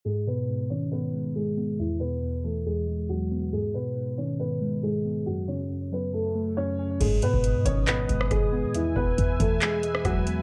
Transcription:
<<
  \new Staff \with { instrumentName = "Analog synth pad" } { \time 4/4 \key gis \phrygian \tempo 4 = 138 << { r1 | r1 | r1 | r1 |
<b' dis'' dis'''>1 | <b' e'' e'''>1 | } \\ { r1 | r1 | r1 | r1 |
gis''1~ | gis''1 | } >> }
  \new Staff \with { instrumentName = "Grand piano" } { \time 4/4 \key gis \phrygian <gis gis'>8 <b b'>4 <cis' cis''>8 <b b'>4 <gis gis'>4 | <e e'>8 <b b'>4 <a a'>8 <gis gis'>4 <fis fis'>4 | <gis gis'>8 <b b'>4 <cis' cis''>8 <b b'>4 <gis gis'>4 | <fis fis'>8 <cis' cis''>4 <b b'>8 <a a'>4 <cis' cis''>4 |
<gis gis'>8 <b b'>4 <cis' cis''>8 <b b'>4 <gis gis'>4 | <e e'>8 <b b'>4 <a a'>8 <gis gis'>4 <fis fis'>4 | }
  \new Staff \with { instrumentName = "Synth keys" } { \clef bass \time 4/4 \key gis \phrygian gis,8 b,8 gis,8 dis8 gis,8 gis8 gis,8 b8 | e,8 b,8 e,8 e8 e,8 gis8 e,8 b8 | gis,8 b,8 gis,8 dis8 gis,8 gis8 gis,8 b8 | fis,8 cis8 fis,8 fis8 fis,8 a8 fis,8 cis'8 |
gis,8 b,8 gis,8 dis8 gis,8 gis8 gis,8 b8 | e,8 b,8 e,8 e8 e,8 gis8 e,8 b8 | }
  \new Staff \with { instrumentName = "808-style bass" } { \clef bass \time 4/4 \key gis \phrygian r1 | r1 | r1 | r1 |
gis,,8 gis,16 gis,,8 gis,16 gis,,4 gis,,8 fis,,8. b,16 | r8 e,,8 e,8 e,4. e,,8 r8 | }
  \new DrumStaff \with { instrumentName = "Drums" } \drummode { \time 4/4 r4 r4 r4 r4 | r4 r4 r4 r4 | r4 r4 r4 r4 | r4 r4 r4 r4 |
<cymc hh bd>8 hh16 bd16 hh8 <hh bd>8 <hc hh>8 <hh bd>16 ss16 <hh bd ss>4 | hh8 bd8 <hh bd>8 <hh bd>8 <hc hh>8 hh16 ss16 <hh bd ss>8 hh8 | }
>>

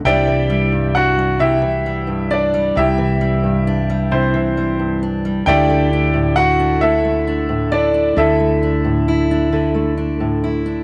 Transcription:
<<
  \new Staff \with { instrumentName = "Grand piano" } { \time 6/8 \key c \lydian \tempo 4. = 44 <g' d'' e'' g''>4 <fis' fis''>8 <e' g' e''>4 <d' d''>8 | <e' g' e''>4. <c' e' c''>4 r8 | <g' d'' e'' g''>4 <fis' fis''>8 <e' a' e''>4 <d' d''>8 | <e' a' e''>2 r4 | }
  \new Staff \with { instrumentName = "Steel-string acoustic guitar" } { \clef bass \time 6/8 \key c \lydian << { <e g d' e'>8 g8 d'16 g8. g8 d'16 g16~ | g8 g8 d'16 g8. g8 d'16 g16 | <a d' e'>8 d'8 e'16 d'8. d'8 e'16 d'16 | r8 d'8 e'16 d'8. d'8 e'16 d'16 | } \\ { c16 e8 g,8. c16 e8 g,8. | c16 e8 g,8. c16 e8 g,8. | d16 a8 a,8. d16 a8 a,8. | d16 a8 a,8. d16 a8 a,8. | } >> }
  \new Staff \with { instrumentName = "Fretless electric bass" } { \clef bass \time 6/8 \key c \lydian c,2. | c,2. | d,2. | d,2. | }
>>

